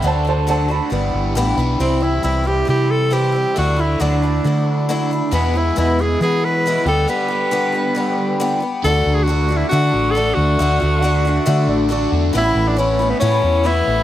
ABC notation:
X:1
M:4/4
L:1/16
Q:1/4=137
K:Glyd
V:1 name="Upright piano"
[=ca]2 [ca]2 [ca]2 b8 z2 | [K:Dlyd] z16 | z16 | z16 |
z16 | z16 | z4 [=f^f]4 e2 d2 [Fd]3 z | z16 |]
V:2 name="Tenor saxophone"
z16 | [K:Dlyd] =C2 E2 E2 =G2 G2 A2 G4 | F2 E2 D8 z4 | B,2 E2 E2 G2 G2 B4 A2 |
B12 z4 | A3 G F3 E F4 A2 F2- | F12 z4 | E3 D C3 B, C4 E4 |]
V:3 name="Overdriven electric guitar"
[D,DFA]6 [D,DFA]2 [G,B,DB]6 [G,B,DB]2 | [K:Dlyd] [=C,E,=G,=CE]16 | [D,A,DF]16 | [E,,B,,E,G,B,G]12- [E,,B,,E,G,B,G]2 [D,=G,B,=G]2- |
[D,=G,B,=G]12- [D,G,B,G]2 z2 | [D,A,DF]4 [D,A,DF]4 [D,A,DF]2 [A,DF]2 [D,A,DF]2 [A,DF]2 | [D,A,DF]4 [D,A,DF]4 [D,A,DF]2 [A,DF]2 [D,A,DF]2 [A,DF]2 | [A,,E,A,CE]4 [E,A,CE]4 [E,A,CE]2 [A,CE]2 [A,,E,A,CE]2 [A,CE]2 |]
V:4 name="Twelve-string acoustic guitar"
[D,F,A,DF]2 [A,DF]2 [D,F,A,DF]2 [A,DF]2 [E,G,B,E]4 [G,,D,E,G,B,E]2 [E,G,B,E]2 | [K:Dlyd] [=C,E,=G,=CE]2 [G,CE]2 [C,E,G,CE]2 [G,CE]2 [E,G,CE]4 [C,E,G,CE]2 [G,CE]2 | [D,F,A,DE]2 [A,DE]2 [D,F,A,DE]2 [A,DE]2 [F,A,DE]4 [D,F,A,DE]2 [A,DE]2 | [E,,B,,E,G,B,E]2 [E,G,B,E]2 [E,,B,,E,G,B,E]2 [E,B,E]2 [E,G,B,E]4 [E,,B,,E,G,B,E]2 [=G,B,=G]2 |
[D,=G,B,=G]2 [G,B,G]2 [D,G,B,G]2 [G,B,G]2 [D,G,B,G]4 [D,G,B,G]2 [G,B,G]2 | [D,A,DF]4 [D,A,DF]2 [A,DF]2 [D,A,DF]4 [D,A,DF]4 | [D,A,DF]2 [A,DF]2 [D,A,DF]2 [A,DF]2 [D,A,DF]4 [D,A,DF]4 | [A,,E,B,CE]4 [E,B,CE]2 [B,CE]2 [A,,E,B,CE]4 [E,B,CE]4 |]
V:5 name="Fingered electric bass" clef=bass
D,,8 G,,,2 G,,,2 A,,,2 B,,,2 | [K:Dlyd] =C,,4 C,,4 =C,8 | D,,4 D,,4 D,8 | E,,4 E,,4 E,6 D,,2 |
z16 | D,,2 D,,6 D,2 A,,,4 D,,2 | D,,2 D,,6 D,2 A,,,4 E,,2 | A,,,2 A,,,6 A,,2 E,,4 A,,,2 |]